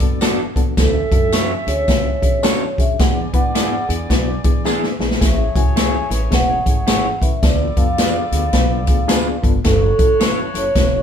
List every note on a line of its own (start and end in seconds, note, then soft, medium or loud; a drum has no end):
0.00 0.41 F#1 medium
0.00 0.52 B3 medium
0.00 0.18 B3 medium
0.00 0.18 D4 medium
0.00 0.18 F#4 medium
0.00 0.52 A4 medium
0.00 0.18 A4 medium
0.00 0.52 D5 medium
0.00 kick medium
0.00 closed hi-hat medium
0.21 0.49 B3 loud
0.21 0.49 D4 loud
0.21 0.39 F#4 medium
0.21 0.49 F#4 loud
0.21 0.40 A4 medium
0.21 0.49 A4 loud
0.21 0.40 D5 medium
0.21 snare loud
0.21 closed hi-hat medium
0.21 tambourine medium
0.56 0.72 D#2 medium
0.56 0.73 B3 medium
0.56 0.73 D4 medium
0.56 0.73 F#4 medium
0.56 0.73 A4 loud
0.56 kick medium
0.56 closed hi-hat medium
0.77 1.03 D2 loud
0.77 2.74 C#4 medium
0.77 1.04 C#4 medium
0.77 1.04 D4 medium
0.77 1.04 F#4 medium
0.77 2.74 A4 medium
0.77 1.04 A4 medium
0.77 1.29 A4 medium
0.77 2.74 E5 medium
0.77 kick loud
0.77 snare loud
0.77 closed hi-hat medium
0.77 tambourine medium
1.12 1.53 F#2 medium
1.12 1.28 C#4 medium
1.12 1.28 D4 medium
1.12 1.29 F#4 medium
1.12 1.29 A4 medium
1.12 kick medium
1.12 closed hi-hat medium
1.33 1.60 C#4 medium
1.33 1.60 D4 medium
1.33 1.51 F#4 medium
1.33 1.60 F#4 medium
1.33 1.51 A4 medium
1.33 1.60 A4 medium
1.33 1.51 C#5 medium
1.33 snare loud
1.33 closed hi-hat loud
1.33 tambourine medium
1.67 1.83 D2 medium
1.67 1.84 C#4 medium
1.67 1.84 D4 medium
1.67 1.84 F#4 medium
1.67 1.84 G#4 medium
1.67 2.74 C#5 medium
1.67 snare soft
1.67 closed hi-hat medium
1.88 2.14 C#2 loud
1.88 2.16 C#4 medium
1.88 2.15 D4 medium
1.88 2.15 F#4 medium
1.88 2.16 A4 medium
1.88 kick medium
1.88 snare loud
1.88 closed hi-hat medium
1.88 tambourine medium
2.22 2.64 E2 medium
2.22 2.39 C#4 medium
2.22 2.39 D4 medium
2.22 2.39 F#4 medium
2.22 2.39 G#4 medium
2.22 kick medium
2.22 closed hi-hat medium
2.43 2.70 C#4 loud
2.43 2.70 D4 loud
2.43 2.70 F#4 medium
2.43 2.62 F#4 medium
2.43 2.71 A4 loud
2.43 2.62 A4 medium
2.43 2.62 C#5 medium
2.43 snare loud
2.43 closed hi-hat loud
2.43 tambourine medium
2.78 2.94 F2 medium
2.78 2.95 C#4 medium
2.78 2.95 D4 medium
2.78 2.95 F#4 medium
2.78 2.95 G#4 medium
2.78 2.99 E5 medium
2.78 kick medium
2.78 closed hi-hat medium
2.99 3.25 E2 loud
2.99 4.96 B3 medium
2.99 3.27 B3 medium
2.99 3.27 D4 medium
2.99 3.27 E4 medium
2.99 4.96 G#4 medium
2.99 3.27 G#4 loud
2.99 4.96 D5 medium
2.99 3.15 F#5 loud
2.99 kick loud
2.99 snare loud
2.99 closed hi-hat medium
2.99 tambourine medium
3.34 3.75 G#2 medium
3.34 3.50 B3 medium
3.34 3.51 D4 medium
3.34 3.51 E4 medium
3.34 3.50 B4 loud
3.34 3.86 F#5 medium
3.34 kick medium
3.34 closed hi-hat medium
3.55 3.82 B3 medium
3.55 3.82 D4 medium
3.55 3.73 E4 medium
3.55 3.82 E4 medium
3.55 3.82 G#4 medium
3.55 3.73 G#4 medium
3.55 3.73 D5 medium
3.55 snare loud
3.55 closed hi-hat medium
3.55 tambourine medium
3.89 4.05 E2 medium
3.89 4.06 B3 medium
3.89 4.06 D4 medium
3.89 4.06 E4 medium
3.89 4.05 G#4 medium
3.89 closed hi-hat medium
4.10 4.36 B1 medium
4.10 4.37 B3 medium
4.10 4.37 D4 medium
4.10 4.37 E4 medium
4.10 4.37 F#4 medium
4.10 kick medium
4.10 snare loud
4.10 closed hi-hat medium
4.10 tambourine medium
4.44 4.86 E3 medium
4.44 4.61 B3 medium
4.44 4.61 D4 medium
4.44 4.61 E4 medium
4.44 4.61 G#4 medium
4.44 kick medium
4.44 closed hi-hat medium
4.65 4.93 B3 loud
4.65 4.93 D4 loud
4.65 4.92 E4 medium
4.65 4.84 E4 medium
4.65 4.93 G#4 loud
4.65 4.84 G#4 medium
4.65 4.84 D5 loud
4.65 snare medium
4.65 tambourine medium
4.84 snare medium
4.99 5.15 A#1 medium
4.99 5.17 B3 medium
4.99 5.17 D4 medium
4.99 5.17 E4 medium
4.99 5.17 G#4 medium
4.99 snare medium
5.11 snare medium
5.20 5.47 A1 medium
5.20 5.48 A3 medium
5.20 7.18 A3 medium
5.20 5.48 C#4 medium
5.20 5.48 E4 medium
5.20 7.18 G#4 medium
5.20 5.48 G#4 medium
5.20 7.17 C#5 medium
5.20 5.57 E5 medium
5.20 kick medium
5.20 snare loud
5.20 closed hi-hat medium
5.20 tambourine medium
5.56 5.97 C#2 medium
5.56 5.72 A3 medium
5.56 5.72 C#4 medium
5.56 5.72 E4 medium
5.56 5.72 F#4 medium
5.56 6.08 G#5 loud
5.56 kick loud
5.56 closed hi-hat medium
5.76 6.03 A3 medium
5.76 6.03 C#4 medium
5.76 6.03 E4 medium
5.76 5.95 E4 medium
5.76 6.03 G#4 medium
5.76 5.95 G#4 loud
5.76 5.95 C#5 medium
5.76 snare loud
5.76 closed hi-hat medium
5.76 tambourine medium
6.10 6.26 A1 medium
6.10 6.28 A3 medium
6.10 6.28 C#4 medium
6.10 6.27 E4 medium
6.10 6.28 B4 medium
6.10 snare soft
6.10 closed hi-hat medium
6.31 6.57 E1 medium
6.31 6.59 A3 medium
6.31 6.58 C#4 medium
6.31 6.58 E4 medium
6.31 6.59 G#4 medium
6.31 7.25 F#5 loud
6.31 kick medium
6.31 snare loud
6.31 closed hi-hat medium
6.31 tambourine medium
6.65 7.08 G#1 medium
6.65 6.82 A3 medium
6.65 6.82 C#4 medium
6.65 6.83 E4 medium
6.65 6.83 G#4 medium
6.65 kick medium
6.65 closed hi-hat medium
6.87 7.15 A3 medium
6.87 7.15 C#4 medium
6.87 7.05 E4 medium
6.87 7.15 E4 medium
6.87 7.06 G#4 medium
6.87 7.15 G#4 medium
6.87 7.06 C#5 loud
6.87 snare loud
6.87 closed hi-hat medium
6.87 tambourine medium
7.21 7.37 D#2 medium
7.21 7.39 A3 medium
7.21 7.39 C#4 medium
7.21 7.39 E4 medium
7.21 7.39 B4 medium
7.21 7.44 E5 medium
7.21 kick medium
7.21 closed hi-hat medium
7.42 7.68 D2 loud
7.42 9.39 B3 medium
7.42 7.70 B3 medium
7.42 7.70 D4 medium
7.42 7.70 F4 medium
7.42 9.39 A4 medium
7.42 7.70 A4 medium
7.42 9.39 D5 medium
7.42 7.78 D5 medium
7.42 kick loud
7.42 snare loud
7.42 closed hi-hat medium
7.42 tambourine medium
7.77 8.18 F2 medium
7.77 7.94 B3 medium
7.77 7.94 D4 medium
7.77 7.94 F4 medium
7.77 7.94 A4 loud
7.77 9.40 F5 medium
7.77 kick medium
7.77 closed hi-hat medium
7.98 8.25 B3 medium
7.98 8.25 D4 medium
7.98 8.25 F4 medium
7.98 8.16 F4 medium
7.98 8.26 G#4 medium
7.98 8.17 B4 medium
7.98 8.17 D5 medium
7.98 snare loud
7.98 closed hi-hat medium
7.98 tambourine medium
8.32 8.48 D2 medium
8.32 8.49 B3 medium
8.32 8.49 D4 medium
8.32 8.49 F4 medium
8.32 8.49 G#4 medium
8.32 snare soft
8.32 closed hi-hat medium
8.53 8.87 B1 loud
8.53 8.81 B3 medium
8.53 8.81 D4 medium
8.53 8.81 F4 medium
8.53 8.81 B4 medium
8.53 kick medium
8.53 snare loud
8.53 closed hi-hat medium
8.53 tambourine medium
8.87 9.29 D2 medium
8.87 9.05 B3 medium
8.87 9.05 D4 medium
8.87 9.05 F4 medium
8.87 9.05 G#4 medium
8.87 kick medium
8.87 closed hi-hat medium
9.08 9.36 B3 loud
9.08 9.36 D4 loud
9.08 9.36 F4 loud
9.08 9.27 F4 medium
9.08 9.36 G#4 loud
9.08 9.27 B4 medium
9.08 9.28 D5 medium
9.08 snare loud
9.08 closed hi-hat medium
9.08 tambourine loud
9.43 9.59 G1 loud
9.43 9.60 B3 medium
9.43 9.60 D4 medium
9.43 9.60 F4 medium
9.43 9.60 A4 loud
9.43 kick medium
9.43 closed hi-hat medium
9.64 9.90 F#1 loud
9.64 11.03 A3 medium
9.64 9.92 C#4 medium
9.64 9.92 E4 medium
9.64 11.03 F#4 medium
9.64 9.92 F#4 medium
9.64 9.92 A4 loud
9.64 10.17 A4 loud
9.64 11.03 C#5 medium
9.64 kick medium
9.64 snare loud
9.64 closed hi-hat medium
9.64 tambourine medium
9.98 10.40 A1 medium
9.98 10.15 C#4 medium
9.98 10.15 E4 medium
9.98 10.15 F#4 medium
9.98 10.15 A4 medium
9.98 kick medium
9.98 closed hi-hat medium
10.20 10.48 C#4 medium
10.20 10.38 E4 medium
10.20 10.48 E4 medium
10.20 10.48 F#4 medium
10.20 10.38 A4 medium
10.20 10.48 B4 medium
10.20 10.39 C#5 medium
10.20 snare loud
10.20 closed hi-hat medium
10.20 tambourine medium
10.54 10.70 F#1 medium
10.54 10.72 C#4 medium
10.54 10.72 E4 medium
10.54 10.72 F#4 medium
10.54 10.72 A4 medium
10.54 10.78 C#5 loud
10.54 snare soft
10.54 closed hi-hat medium
10.75 11.01 E1 medium
10.75 11.03 C#4 medium
10.75 11.03 E4 medium
10.75 11.03 F#4 medium
10.75 11.03 A4 medium
10.75 kick medium
10.75 snare loud
10.75 closed hi-hat medium
10.75 tambourine medium